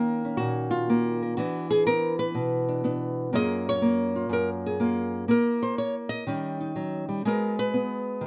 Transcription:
0, 0, Header, 1, 2, 480
1, 0, Start_track
1, 0, Key_signature, -6, "minor"
1, 0, Tempo, 491400
1, 1320, Time_signature, 4, 2, 24, 8
1, 8075, End_track
2, 0, Start_track
2, 0, Title_t, "Nylon-string guitar"
2, 0, Program_c, 0, 24
2, 0, Note_on_c, 0, 51, 66
2, 0, Note_on_c, 0, 58, 62
2, 0, Note_on_c, 0, 61, 48
2, 0, Note_on_c, 0, 70, 97
2, 218, Note_off_c, 0, 61, 0
2, 242, Note_on_c, 0, 61, 39
2, 360, Note_off_c, 0, 70, 0
2, 364, Note_on_c, 0, 66, 83
2, 386, Note_on_c, 0, 46, 62
2, 691, Note_on_c, 0, 65, 77
2, 849, Note_off_c, 0, 58, 0
2, 875, Note_on_c, 0, 58, 56
2, 1164, Note_off_c, 0, 66, 0
2, 1195, Note_on_c, 0, 70, 49
2, 1313, Note_off_c, 0, 51, 0
2, 1314, Note_off_c, 0, 46, 0
2, 1317, Note_off_c, 0, 70, 0
2, 1318, Note_off_c, 0, 58, 0
2, 1320, Note_off_c, 0, 61, 0
2, 1323, Note_off_c, 0, 65, 0
2, 1338, Note_on_c, 0, 66, 81
2, 1346, Note_on_c, 0, 52, 68
2, 1356, Note_on_c, 0, 59, 47
2, 1360, Note_on_c, 0, 62, 44
2, 1651, Note_off_c, 0, 66, 0
2, 1666, Note_on_c, 0, 68, 85
2, 1809, Note_off_c, 0, 59, 0
2, 1811, Note_off_c, 0, 68, 0
2, 1820, Note_on_c, 0, 59, 61
2, 1823, Note_on_c, 0, 70, 95
2, 2133, Note_off_c, 0, 70, 0
2, 2140, Note_on_c, 0, 71, 94
2, 2291, Note_on_c, 0, 47, 60
2, 2611, Note_off_c, 0, 62, 0
2, 2623, Note_on_c, 0, 62, 43
2, 2762, Note_off_c, 0, 59, 0
2, 2769, Note_off_c, 0, 62, 0
2, 2774, Note_on_c, 0, 59, 60
2, 2783, Note_on_c, 0, 62, 45
2, 3227, Note_off_c, 0, 59, 0
2, 3231, Note_off_c, 0, 62, 0
2, 3244, Note_off_c, 0, 47, 0
2, 3247, Note_off_c, 0, 71, 0
2, 3249, Note_off_c, 0, 52, 0
2, 3250, Note_on_c, 0, 42, 66
2, 3252, Note_on_c, 0, 58, 47
2, 3262, Note_on_c, 0, 65, 49
2, 3269, Note_on_c, 0, 68, 47
2, 3277, Note_on_c, 0, 75, 102
2, 3580, Note_off_c, 0, 75, 0
2, 3604, Note_on_c, 0, 73, 99
2, 3718, Note_off_c, 0, 58, 0
2, 3730, Note_on_c, 0, 58, 65
2, 4049, Note_off_c, 0, 65, 0
2, 4061, Note_on_c, 0, 65, 47
2, 4182, Note_off_c, 0, 42, 0
2, 4193, Note_on_c, 0, 42, 61
2, 4213, Note_off_c, 0, 68, 0
2, 4229, Note_on_c, 0, 70, 87
2, 4385, Note_off_c, 0, 70, 0
2, 4556, Note_on_c, 0, 68, 81
2, 4675, Note_off_c, 0, 58, 0
2, 4683, Note_off_c, 0, 65, 0
2, 4687, Note_on_c, 0, 58, 61
2, 4695, Note_on_c, 0, 65, 45
2, 4699, Note_off_c, 0, 73, 0
2, 5143, Note_off_c, 0, 58, 0
2, 5147, Note_off_c, 0, 65, 0
2, 5155, Note_off_c, 0, 42, 0
2, 5159, Note_on_c, 0, 58, 70
2, 5169, Note_on_c, 0, 64, 47
2, 5175, Note_off_c, 0, 68, 0
2, 5183, Note_on_c, 0, 70, 85
2, 5495, Note_on_c, 0, 72, 81
2, 5644, Note_off_c, 0, 72, 0
2, 5648, Note_on_c, 0, 73, 90
2, 5804, Note_off_c, 0, 73, 0
2, 5951, Note_on_c, 0, 75, 91
2, 5973, Note_off_c, 0, 70, 0
2, 6099, Note_off_c, 0, 58, 0
2, 6104, Note_off_c, 0, 64, 0
2, 6122, Note_on_c, 0, 51, 64
2, 6131, Note_on_c, 0, 55, 47
2, 6133, Note_on_c, 0, 61, 48
2, 6140, Note_on_c, 0, 63, 45
2, 6439, Note_off_c, 0, 63, 0
2, 6451, Note_on_c, 0, 63, 45
2, 6595, Note_off_c, 0, 55, 0
2, 6599, Note_on_c, 0, 54, 58
2, 6918, Note_off_c, 0, 54, 0
2, 6922, Note_on_c, 0, 55, 58
2, 7061, Note_off_c, 0, 51, 0
2, 7064, Note_off_c, 0, 63, 0
2, 7066, Note_off_c, 0, 61, 0
2, 7073, Note_off_c, 0, 75, 0
2, 7078, Note_off_c, 0, 55, 0
2, 7085, Note_on_c, 0, 56, 70
2, 7093, Note_on_c, 0, 59, 47
2, 7101, Note_on_c, 0, 66, 43
2, 7105, Note_on_c, 0, 70, 86
2, 7411, Note_off_c, 0, 70, 0
2, 7414, Note_on_c, 0, 71, 100
2, 7555, Note_off_c, 0, 59, 0
2, 7559, Note_on_c, 0, 59, 56
2, 8020, Note_on_c, 0, 51, 61
2, 8075, Note_off_c, 0, 51, 0
2, 8075, Note_off_c, 0, 56, 0
2, 8075, Note_off_c, 0, 59, 0
2, 8075, Note_off_c, 0, 66, 0
2, 8075, Note_off_c, 0, 71, 0
2, 8075, End_track
0, 0, End_of_file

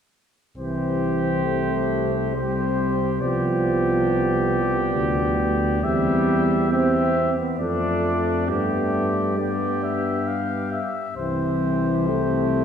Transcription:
0, 0, Header, 1, 6, 480
1, 0, Start_track
1, 0, Key_signature, 0, "major"
1, 0, Tempo, 887574
1, 313, Time_signature, 3, 2, 24, 8
1, 1273, Tempo, 869565
1, 3193, Tempo, 891530
1, 6861, End_track
2, 0, Start_track
2, 0, Title_t, "Trumpet"
2, 0, Program_c, 0, 56
2, 312, Note_on_c, 0, 72, 39
2, 1251, Note_off_c, 0, 72, 0
2, 1273, Note_on_c, 0, 72, 42
2, 1748, Note_on_c, 0, 74, 41
2, 1756, Note_off_c, 0, 72, 0
2, 3195, Note_on_c, 0, 76, 49
2, 3203, Note_off_c, 0, 74, 0
2, 3672, Note_off_c, 0, 76, 0
2, 3677, Note_on_c, 0, 76, 48
2, 3992, Note_off_c, 0, 76, 0
2, 4141, Note_on_c, 0, 74, 45
2, 4601, Note_off_c, 0, 74, 0
2, 4628, Note_on_c, 0, 74, 35
2, 5095, Note_off_c, 0, 74, 0
2, 5098, Note_on_c, 0, 74, 41
2, 5327, Note_off_c, 0, 74, 0
2, 5346, Note_on_c, 0, 76, 39
2, 5585, Note_on_c, 0, 77, 47
2, 5593, Note_off_c, 0, 76, 0
2, 5821, Note_off_c, 0, 77, 0
2, 5824, Note_on_c, 0, 76, 37
2, 6062, Note_off_c, 0, 76, 0
2, 6065, Note_on_c, 0, 72, 38
2, 6861, Note_off_c, 0, 72, 0
2, 6861, End_track
3, 0, Start_track
3, 0, Title_t, "Trumpet"
3, 0, Program_c, 1, 56
3, 315, Note_on_c, 1, 67, 44
3, 1252, Note_off_c, 1, 67, 0
3, 1272, Note_on_c, 1, 67, 39
3, 1743, Note_off_c, 1, 67, 0
3, 1749, Note_on_c, 1, 67, 43
3, 3169, Note_off_c, 1, 67, 0
3, 3186, Note_on_c, 1, 67, 46
3, 3659, Note_off_c, 1, 67, 0
3, 3665, Note_on_c, 1, 67, 48
3, 3986, Note_off_c, 1, 67, 0
3, 4149, Note_on_c, 1, 62, 44
3, 4625, Note_on_c, 1, 67, 41
3, 4633, Note_off_c, 1, 62, 0
3, 5105, Note_off_c, 1, 67, 0
3, 5108, Note_on_c, 1, 67, 39
3, 5880, Note_off_c, 1, 67, 0
3, 6077, Note_on_c, 1, 67, 43
3, 6861, Note_off_c, 1, 67, 0
3, 6861, End_track
4, 0, Start_track
4, 0, Title_t, "French horn"
4, 0, Program_c, 2, 60
4, 312, Note_on_c, 2, 60, 43
4, 1251, Note_off_c, 2, 60, 0
4, 1269, Note_on_c, 2, 60, 37
4, 1741, Note_off_c, 2, 60, 0
4, 1750, Note_on_c, 2, 59, 47
4, 3170, Note_off_c, 2, 59, 0
4, 3195, Note_on_c, 2, 60, 54
4, 3585, Note_off_c, 2, 60, 0
4, 3677, Note_on_c, 2, 60, 49
4, 3992, Note_off_c, 2, 60, 0
4, 4155, Note_on_c, 2, 60, 43
4, 4635, Note_on_c, 2, 59, 42
4, 4643, Note_off_c, 2, 60, 0
4, 5109, Note_off_c, 2, 59, 0
4, 5112, Note_on_c, 2, 59, 47
4, 5882, Note_off_c, 2, 59, 0
4, 6074, Note_on_c, 2, 60, 47
4, 6861, Note_off_c, 2, 60, 0
4, 6861, End_track
5, 0, Start_track
5, 0, Title_t, "Trombone"
5, 0, Program_c, 3, 57
5, 314, Note_on_c, 3, 52, 49
5, 776, Note_off_c, 3, 52, 0
5, 787, Note_on_c, 3, 57, 61
5, 1267, Note_on_c, 3, 55, 46
5, 1275, Note_off_c, 3, 57, 0
5, 1750, Note_off_c, 3, 55, 0
5, 1754, Note_on_c, 3, 53, 55
5, 2930, Note_off_c, 3, 53, 0
5, 3191, Note_on_c, 3, 55, 67
5, 3649, Note_off_c, 3, 55, 0
5, 3672, Note_on_c, 3, 60, 71
5, 4021, Note_off_c, 3, 60, 0
5, 4033, Note_on_c, 3, 59, 53
5, 4144, Note_off_c, 3, 59, 0
5, 4147, Note_on_c, 3, 57, 59
5, 4616, Note_off_c, 3, 57, 0
5, 4619, Note_on_c, 3, 57, 62
5, 5108, Note_on_c, 3, 55, 44
5, 5116, Note_off_c, 3, 57, 0
5, 5589, Note_off_c, 3, 55, 0
5, 6074, Note_on_c, 3, 52, 53
5, 6557, Note_on_c, 3, 57, 73
5, 6565, Note_off_c, 3, 52, 0
5, 6861, Note_off_c, 3, 57, 0
5, 6861, End_track
6, 0, Start_track
6, 0, Title_t, "Bass trombone"
6, 0, Program_c, 4, 57
6, 307, Note_on_c, 4, 36, 37
6, 1728, Note_off_c, 4, 36, 0
6, 1746, Note_on_c, 4, 36, 42
6, 2707, Note_on_c, 4, 38, 45
6, 2715, Note_off_c, 4, 36, 0
6, 3186, Note_off_c, 4, 38, 0
6, 3189, Note_on_c, 4, 40, 47
6, 3977, Note_off_c, 4, 40, 0
6, 4140, Note_on_c, 4, 41, 49
6, 4622, Note_on_c, 4, 43, 44
6, 4630, Note_off_c, 4, 41, 0
6, 5893, Note_off_c, 4, 43, 0
6, 6068, Note_on_c, 4, 36, 42
6, 6861, Note_off_c, 4, 36, 0
6, 6861, End_track
0, 0, End_of_file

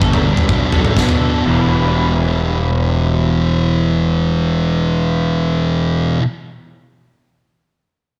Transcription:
0, 0, Header, 1, 5, 480
1, 0, Start_track
1, 0, Key_signature, 1, "minor"
1, 0, Tempo, 475813
1, 1458, Time_signature, 4, 2, 24, 8
1, 8263, End_track
2, 0, Start_track
2, 0, Title_t, "Clean electric guitar"
2, 0, Program_c, 0, 27
2, 0, Note_on_c, 0, 55, 75
2, 0, Note_on_c, 0, 59, 58
2, 15, Note_on_c, 0, 69, 73
2, 255, Note_on_c, 0, 62, 54
2, 489, Note_on_c, 0, 47, 64
2, 496, Note_off_c, 0, 62, 0
2, 496, Note_off_c, 0, 69, 0
2, 497, Note_off_c, 0, 59, 0
2, 500, Note_off_c, 0, 55, 0
2, 735, Note_on_c, 0, 69, 68
2, 978, Note_on_c, 0, 62, 66
2, 1196, Note_off_c, 0, 69, 0
2, 1208, Note_on_c, 0, 69, 61
2, 1441, Note_off_c, 0, 47, 0
2, 1441, Note_on_c, 0, 40, 86
2, 1453, Note_off_c, 0, 69, 0
2, 1453, Note_on_c, 0, 47, 83
2, 1458, Note_off_c, 0, 62, 0
2, 1463, Note_on_c, 0, 52, 81
2, 1467, Note_on_c, 0, 55, 94
2, 1476, Note_on_c, 0, 62, 95
2, 1484, Note_on_c, 0, 64, 90
2, 6230, Note_off_c, 0, 40, 0
2, 6242, Note_off_c, 0, 47, 0
2, 6252, Note_off_c, 0, 52, 0
2, 6256, Note_off_c, 0, 55, 0
2, 6265, Note_off_c, 0, 62, 0
2, 6273, Note_off_c, 0, 64, 0
2, 8263, End_track
3, 0, Start_track
3, 0, Title_t, "Distorted electric guitar"
3, 0, Program_c, 1, 30
3, 8, Note_on_c, 1, 43, 86
3, 18, Note_on_c, 1, 50, 88
3, 24, Note_on_c, 1, 55, 71
3, 33, Note_on_c, 1, 59, 89
3, 39, Note_on_c, 1, 62, 93
3, 237, Note_off_c, 1, 62, 0
3, 249, Note_on_c, 1, 62, 70
3, 251, Note_off_c, 1, 59, 0
3, 263, Note_on_c, 1, 59, 53
3, 268, Note_off_c, 1, 55, 0
3, 280, Note_on_c, 1, 55, 54
3, 478, Note_off_c, 1, 43, 0
3, 479, Note_off_c, 1, 62, 0
3, 483, Note_off_c, 1, 50, 0
3, 486, Note_off_c, 1, 59, 0
3, 488, Note_on_c, 1, 47, 89
3, 494, Note_off_c, 1, 55, 0
3, 502, Note_on_c, 1, 54, 97
3, 511, Note_on_c, 1, 59, 96
3, 521, Note_on_c, 1, 62, 90
3, 718, Note_off_c, 1, 62, 0
3, 730, Note_on_c, 1, 62, 61
3, 731, Note_off_c, 1, 59, 0
3, 743, Note_on_c, 1, 59, 51
3, 748, Note_off_c, 1, 54, 0
3, 760, Note_on_c, 1, 54, 53
3, 955, Note_off_c, 1, 47, 0
3, 967, Note_on_c, 1, 47, 84
3, 970, Note_off_c, 1, 54, 0
3, 981, Note_off_c, 1, 59, 0
3, 982, Note_on_c, 1, 54, 87
3, 992, Note_off_c, 1, 62, 0
3, 993, Note_on_c, 1, 59, 81
3, 1004, Note_on_c, 1, 62, 84
3, 1197, Note_off_c, 1, 62, 0
3, 1209, Note_on_c, 1, 62, 72
3, 1212, Note_off_c, 1, 59, 0
3, 1224, Note_on_c, 1, 59, 56
3, 1230, Note_off_c, 1, 54, 0
3, 1242, Note_on_c, 1, 54, 58
3, 1438, Note_off_c, 1, 47, 0
3, 1439, Note_off_c, 1, 62, 0
3, 1447, Note_off_c, 1, 59, 0
3, 1450, Note_on_c, 1, 40, 68
3, 1455, Note_off_c, 1, 54, 0
3, 1470, Note_on_c, 1, 47, 86
3, 1491, Note_on_c, 1, 52, 91
3, 6239, Note_off_c, 1, 40, 0
3, 6259, Note_off_c, 1, 47, 0
3, 6280, Note_off_c, 1, 52, 0
3, 8263, End_track
4, 0, Start_track
4, 0, Title_t, "Fingered electric bass"
4, 0, Program_c, 2, 33
4, 16, Note_on_c, 2, 31, 74
4, 316, Note_off_c, 2, 31, 0
4, 497, Note_on_c, 2, 35, 74
4, 647, Note_off_c, 2, 35, 0
4, 740, Note_on_c, 2, 35, 82
4, 889, Note_off_c, 2, 35, 0
4, 977, Note_on_c, 2, 47, 79
4, 1277, Note_off_c, 2, 47, 0
4, 1464, Note_on_c, 2, 28, 74
4, 6213, Note_off_c, 2, 28, 0
4, 8263, End_track
5, 0, Start_track
5, 0, Title_t, "Drums"
5, 16, Note_on_c, 9, 36, 85
5, 117, Note_off_c, 9, 36, 0
5, 135, Note_on_c, 9, 43, 63
5, 135, Note_on_c, 9, 47, 66
5, 236, Note_off_c, 9, 43, 0
5, 236, Note_off_c, 9, 47, 0
5, 376, Note_on_c, 9, 43, 76
5, 477, Note_off_c, 9, 43, 0
5, 495, Note_on_c, 9, 36, 95
5, 596, Note_off_c, 9, 36, 0
5, 731, Note_on_c, 9, 43, 74
5, 831, Note_off_c, 9, 43, 0
5, 853, Note_on_c, 9, 47, 72
5, 954, Note_off_c, 9, 47, 0
5, 975, Note_on_c, 9, 36, 89
5, 985, Note_on_c, 9, 38, 70
5, 1075, Note_off_c, 9, 36, 0
5, 1086, Note_off_c, 9, 38, 0
5, 1097, Note_on_c, 9, 43, 81
5, 1198, Note_off_c, 9, 43, 0
5, 8263, End_track
0, 0, End_of_file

